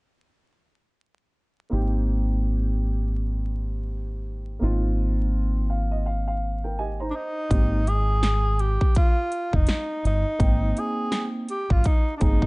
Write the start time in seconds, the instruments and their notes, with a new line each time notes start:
1.70 fingered electric bass G#1, upright piano A#3 C4 D#4 G4
4.59 fingered electric bass G#1, upright piano A#3 C4 D#4 F4
5.70 upright piano F5
5.91 upright piano D#5
6.06 upright piano F5
6.28 upright piano F5
6.64 upright piano A#4 G5
6.79 upright piano G4 D#5 G#5
7.00 upright piano D#4 C5 A#5
7.10 tenor saxophone D4
7.16 tenor saxophone D#4
7.50 fingered electric bass G#1, upright piano A#3 C4 D#4 G4, kick, closed hi-hat
7.87 tenor saxophone G#4, closed hi-hat
8.23 snare, closed hi-hat
8.59 tenor saxophone G4, closed hi-hat
8.81 kick
8.95 tenor saxophone F4, kick, closed hi-hat
9.32 closed hi-hat
9.53 fingered electric bass F1, tenor saxophone D#4, kick
9.67 snare, closed hi-hat
10.05 fingered electric bass G1, tenor saxophone D#4, closed hi-hat
10.39 fingered electric bass G#1, upright piano A#3 C4 D#4 G5, kick, closed hi-hat
10.77 tenor saxophone G#4, closed hi-hat
11.12 snare, closed hi-hat
11.48 tenor saxophone G4, closed hi-hat
11.70 fingered electric bass G#1, tenor saxophone F4, kick
11.84 tenor saxophone D#4, kick, closed hi-hat
12.17 upright piano A#3 C4 D#4, tenor saxophone D4, closed hi-hat
12.21 fingered electric bass G1, tenor saxophone D#4, upright piano G#4, kick
12.42 kick